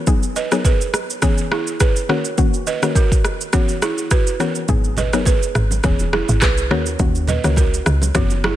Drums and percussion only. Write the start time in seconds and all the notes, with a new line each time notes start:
0.07 kick, shaker
0.23 shaker
0.36 shaker
0.52 cross-stick, shaker
0.65 kick, shaker
0.81 shaker
0.94 cross-stick, shaker
1.10 shaker
1.22 kick, cross-stick, shaker
1.38 shaker
1.52 cross-stick
1.67 shaker
1.80 kick, cross-stick, shaker
1.96 shaker
2.10 cross-stick
2.25 shaker
2.38 kick, shaker
2.54 shaker
2.67 shaker
2.83 cross-stick, shaker
2.95 kick, shaker
3.12 kick, shaker
3.25 cross-stick, shaker
3.41 shaker
3.53 kick, cross-stick, shaker
3.69 shaker
3.82 cross-stick, shaker
3.98 shaker
4.11 kick, cross-stick, shaker
4.27 shaker
4.40 cross-stick, shaker
4.55 shaker
4.69 kick, low conga, shaker
4.84 shaker
4.97 low bongo, low conga, shaker
5.13 cross-stick, shaker
5.25 kick, high bongo, shaker
5.43 shaker
5.55 cross-stick, shaker
5.71 low bongo, shaker
5.84 kick, cross-stick, low conga, shaker
5.99 high bongo, shaker
6.13 cross-stick, low bongo
6.29 shaker
6.42 kick, cross-stick, clap, high bongo, shaker
6.58 shaker
6.71 cross-stick
6.86 shaker
6.99 kick, low conga, shaker
7.15 shaker
7.28 low bongo, low conga, shaker
7.44 cross-stick, shaker
7.56 kick, high bongo, shaker
7.74 shaker
7.86 cross-stick, shaker
8.02 low bongo, shaker
8.15 kick, cross-stick, low conga, shaker
8.30 high bongo, shaker
8.44 cross-stick, low bongo